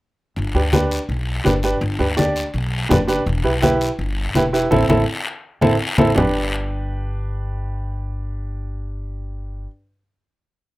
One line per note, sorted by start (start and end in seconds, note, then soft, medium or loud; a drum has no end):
0.36 0.51 G1 loud
0.36 high conga soft
0.36 long guiro medium
0.55 0.98 D2 medium
0.55 0.61 D4 medium
0.55 0.61 G4 medium
0.55 0.61 B4 medium
0.73 0.98 D4 medium
0.73 0.98 G4 medium
0.73 0.98 B4 medium
0.73 high conga medium
0.73 short guiro medium
0.91 short guiro medium
1.09 1.38 B1 medium
1.09 high conga soft
1.09 long guiro medium
1.44 1.74 G1 medium
1.44 1.51 D4 medium
1.44 1.51 G4 medium
1.44 1.52 B4 medium
1.44 high conga medium
1.44 short guiro medium
1.63 1.76 D4 medium
1.63 1.76 G4 medium
1.63 1.76 B4 medium
1.63 short guiro medium
1.81 1.96 G1 loud
1.81 high conga soft
1.81 long guiro medium
1.99 2.43 D2 medium
1.99 2.06 D4 medium
1.99 2.06 G4 medium
1.99 2.06 B4 medium
2.17 2.43 D4 medium
2.17 2.43 G4 medium
2.17 2.43 D5 medium
2.17 high conga medium
2.17 short guiro medium
2.36 short guiro medium
2.54 2.83 B1 medium
2.54 high conga soft
2.54 long guiro medium
2.89 3.20 F#1 medium
2.89 2.96 D4 medium
2.89 2.96 G4 medium
2.89 2.97 B4 medium
2.89 high conga medium
2.89 low conga medium
2.89 short guiro medium
3.08 3.21 D4 medium
3.08 3.21 G4 medium
3.08 3.21 B4 medium
3.08 short guiro medium
3.26 3.41 E1 loud
3.26 high conga soft
3.26 long guiro medium
3.44 3.88 B1 medium
3.44 3.51 E4 medium
3.44 3.51 G4 medium
3.44 3.51 B4 medium
3.62 3.88 E4 medium
3.62 3.88 G4 medium
3.62 3.88 B4 loud
3.62 high conga medium
3.62 short guiro medium
3.81 short guiro medium
3.99 4.28 G1 medium
3.99 high conga soft
3.99 long guiro medium
4.35 4.64 E1 loud
4.35 4.42 E4 medium
4.35 4.42 G4 medium
4.35 4.42 B4 loud
4.35 high conga medium
4.35 short guiro medium
4.53 4.66 E4 medium
4.53 4.66 G4 medium
4.53 4.66 B4 medium
4.53 short guiro medium
4.71 4.85 A1 loud
4.71 4.83 C4 loud
4.71 4.83 E4 loud
4.71 4.83 A4 loud
4.71 high conga medium
4.71 long guiro loud
4.89 5.03 A1 medium
4.89 5.01 C4 medium
4.89 5.01 E4 medium
4.89 5.01 A4 medium
4.89 high conga loud
4.89 long guiro loud
5.61 5.76 A1 medium
5.61 5.74 C4 loud
5.61 5.74 E4 loud
5.61 5.74 A4 loud
5.61 high conga loud
5.61 long guiro medium
5.98 6.12 A1 medium
5.98 6.10 C4 medium
5.98 6.10 E4 loud
5.98 6.10 A4 loud
5.98 high conga loud
5.98 long guiro loud
6.15 9.65 G1 loud
6.15 9.64 D4 medium
6.15 9.66 G4 medium
6.15 9.67 B4 medium
6.15 low conga medium
6.15 long guiro medium